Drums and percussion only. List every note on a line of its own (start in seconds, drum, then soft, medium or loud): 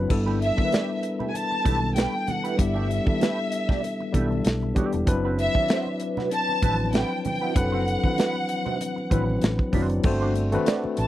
0.10 kick loud
0.10 crash medium
0.10 muted conga soft
0.28 muted conga soft
0.42 closed hi-hat medium
0.58 kick medium
0.58 high conga medium
0.72 snare loud
0.72 closed hi-hat medium
0.72 muted conga soft
1.03 closed hi-hat medium
1.20 low conga medium
1.35 closed hi-hat medium
1.35 muted conga soft
1.52 muted conga soft
1.65 kick medium
1.65 closed hi-hat medium
1.65 high conga medium
1.83 high conga soft
1.96 snare loud
1.96 closed hi-hat medium
1.96 muted conga soft
2.13 muted conga soft
2.28 closed hi-hat medium
2.28 high conga medium
2.28 low conga medium
2.45 closed hi-hat medium
2.59 kick medium
2.59 closed hi-hat medium
2.76 muted conga soft
2.91 closed hi-hat medium
3.07 kick medium
3.07 high conga medium
3.21 snare loud
3.21 closed hi-hat medium
3.21 muted conga soft
3.52 closed hi-hat medium
3.69 kick medium
3.69 snare soft
3.69 low conga medium
3.83 closed hi-hat medium
3.83 muted conga soft
4.00 muted conga soft
4.14 kick medium
4.14 closed hi-hat medium
4.14 high conga medium
4.32 high conga soft
4.45 snare loud
4.45 closed hi-hat medium
4.62 muted conga soft
4.76 kick medium
4.76 closed hi-hat medium
4.76 high conga medium
4.76 low conga medium
4.93 closed hi-hat soft
5.07 kick loud
5.07 closed hi-hat medium
5.39 closed hi-hat medium
5.55 kick medium
5.55 high conga medium
5.68 snare loud
5.68 closed hi-hat medium
5.68 muted conga soft
5.87 muted conga soft
6.00 closed hi-hat medium
6.17 snare soft
6.17 low conga medium
6.31 closed hi-hat medium
6.49 muted conga soft
6.62 kick medium
6.62 closed hi-hat medium
6.62 high conga medium
6.80 high conga medium
6.93 snare loud
6.93 closed hi-hat medium
7.25 closed hi-hat medium
7.25 high conga medium
7.25 low conga medium
7.56 kick loud
7.56 closed hi-hat medium
7.56 muted conga soft
7.56 low conga medium
7.88 closed hi-hat medium
8.04 kick medium
8.04 high conga medium
8.18 snare loud
8.18 closed hi-hat medium
8.18 muted conga soft
8.36 muted conga soft
8.49 closed hi-hat medium
8.66 low conga medium
8.81 closed hi-hat medium
8.81 muted conga soft
8.98 muted conga soft
9.11 kick medium
9.11 closed hi-hat medium
9.11 high conga medium
9.30 high conga soft
9.42 snare loud
9.42 closed hi-hat medium
9.59 kick medium
9.73 kick medium
9.73 open hi-hat medium
9.73 high conga medium
9.73 low conga medium
9.90 closed hi-hat soft
10.03 kick loud
10.03 crash medium
10.03 low conga medium
10.22 muted conga soft
10.35 closed hi-hat medium
10.52 closed hi-hat medium
10.52 high conga medium
10.66 snare loud
10.66 closed hi-hat medium
10.66 muted conga soft
10.84 muted conga soft
10.97 closed hi-hat medium